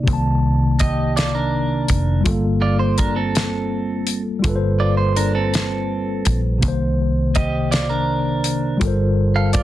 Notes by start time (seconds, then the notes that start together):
0.03 C3 A#3
0.08 C2 D#3, kick, closed hi-hat
0.13 A5
0.79 G4 D#5, kick, closed hi-hat
1.17 F4 D5, snare, closed hi-hat
1.34 D4 A#4
1.88 F1, kick, closed hi-hat
2.21 G3 F4
2.26 G1 A4, kick, closed hi-hat
2.31 A#3
2.62 F4 D5
2.79 C5
2.98 D4 A#4, kick, closed hi-hat
3.16 C4 A4
3.35 snare, closed hi-hat
4.07 closed hi-hat
4.39 G3 F4
4.44 G1 A4, kick, closed hi-hat
4.49 B4
4.56 C5
4.80 F4 D5
4.97 C5
5.16 D4 A#4, closed hi-hat
5.35 C4 A4
5.54 snare, closed hi-hat
6.25 A#1, kick, closed hi-hat
6.58 C3 A#3
6.62 C2 D#3, kick, closed hi-hat
6.68 C5
7.35 G4 D#5, kick, closed hi-hat
7.71 F4 D5, snare, closed hi-hat
7.90 D4 A#4
8.44 closed hi-hat
8.77 G3 F4, closed hi-hat
8.81 G1 A4 A#4, kick
8.87 C5
9.36 A4 F5
9.53 F4 D5, kick, closed hi-hat